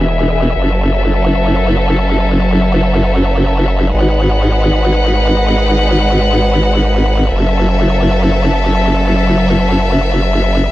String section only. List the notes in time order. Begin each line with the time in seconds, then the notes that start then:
Already playing: E3 B3 G#4 E5
0.56 F#3 C#4 A4
3.94 G#3 D#4 B4 F#5
7.32 F#3 C#4 A4 E5